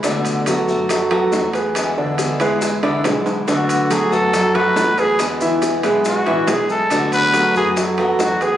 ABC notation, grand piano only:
X:1
M:4/4
L:1/8
Q:1/4=140
K:Bdor
V:1 name="Grand piano"
[D,Dd]2 [F,FA]2 [F,FA] [F,FA]2 [GB]- | [GB] [D,Dd]2 [G,GB]2 [D,Dd] [G,GB]2 | [D,Dd]2 [F,FA]2 [F,FA] [F,FA]2 [GB]- | [GB] [E,Ee]2 [G,GB]2 [E,Ee] [G,GB]2 |
[D,Dd]2 [F,FA]2 [F,FA] [F,FA]2 [GB] |]